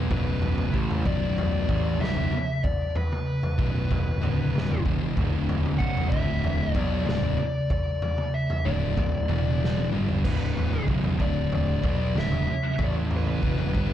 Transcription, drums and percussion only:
0.11 kick loud
0.11 floor tom medium
0.42 floor tom medium
0.58 mid tom medium
0.74 kick loud
0.91 floor tom medium
1.06 kick loud
1.38 floor tom medium
1.69 kick loud
1.69 floor tom medium
2.01 snare medium
2.01 mid tom medium
2.16 floor tom medium
2.32 mid tom medium
2.64 kick loud
2.64 floor tom medium
2.96 floor tom medium
3.12 mid tom medium
3.43 floor tom medium
3.59 kick loud
3.91 kick medium
3.91 floor tom medium
4.23 floor tom medium
4.23 mid tom medium
4.55 snare medium
4.55 mid tom medium
4.70 floor tom medium
4.86 kick loud
5.17 kick loud
5.17 floor tom medium
5.49 floor tom medium
5.66 mid tom medium
5.80 kick loud
5.97 floor tom medium
6.12 kick loud
6.44 floor tom medium
6.75 kick loud
6.75 floor tom medium
7.06 snare medium
7.06 mid tom medium
7.22 floor tom medium
7.38 mid tom medium
7.70 kick loud
7.70 floor tom medium
8.02 floor tom medium
8.18 mid tom medium
8.50 floor tom medium
8.97 kick medium
8.97 floor tom medium
9.29 floor tom medium
9.29 mid tom medium
9.64 snare medium
9.77 high tom medium
9.92 mid tom medium
10.09 floor tom medium
10.24 kick loud
10.24 floor tom medium
10.24 crash medium
10.57 floor tom medium
10.73 mid tom medium
10.88 kick loud
11.04 floor tom medium
11.20 kick loud
11.52 floor tom medium
11.84 kick loud
11.84 floor tom medium
12.15 snare medium
12.15 mid tom medium
12.32 floor tom medium
12.47 mid tom medium
12.79 kick loud
12.79 floor tom medium
13.11 floor tom medium
13.27 mid tom medium
13.43 kick loud
13.58 floor tom medium
13.75 kick loud

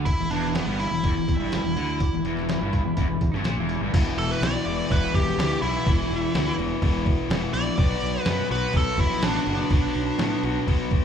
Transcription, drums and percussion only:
0.06 kick loud
0.06 open hi-hat medium
0.30 open hi-hat soft
0.55 snare loud
0.55 open hi-hat medium
0.80 open hi-hat soft
1.04 kick medium
1.04 open hi-hat medium
1.28 kick medium
1.28 open hi-hat soft
1.52 snare loud
1.52 open hi-hat medium
1.77 open hi-hat soft
2.00 kick medium
2.00 open hi-hat medium
2.25 open hi-hat soft
2.37 snare soft
2.49 snare medium
2.49 open hi-hat medium
2.73 kick medium
2.73 open hi-hat soft
2.97 kick medium
2.97 open hi-hat medium
3.21 kick medium
3.21 open hi-hat soft
3.34 snare soft
3.44 snare loud
3.44 open hi-hat medium
3.69 open hi-hat soft
3.94 kick loud
3.94 crash loud
3.94 crash medium
4.18 crash medium
4.42 snare loud
4.42 crash medium
4.66 crash medium
4.90 kick medium
4.90 crash medium
5.14 kick medium
5.14 crash medium
5.28 snare soft
5.39 snare loud
5.39 crash medium
5.63 crash medium
5.86 kick loud
5.86 crash medium
6.11 crash medium
6.35 snare loud
6.35 crash medium
6.59 crash medium
6.82 kick medium
6.82 crash medium
7.06 kick medium
7.06 crash medium
7.30 snare loud
7.30 crash medium
7.54 crash medium
7.78 kick loud
7.78 crash medium
8.01 crash medium
8.25 snare loud
8.25 crash medium
8.49 crash medium
8.73 kick medium
8.73 crash medium
8.97 kick medium
8.97 crash medium
9.10 snare soft
9.22 snare loud
9.22 crash loud
9.46 crash medium
9.70 kick loud
9.70 crash medium
9.95 crash medium
10.19 snare loud
10.19 crash medium
10.43 crash medium
10.67 kick medium
10.67 crash medium
10.91 kick medium
10.91 crash medium

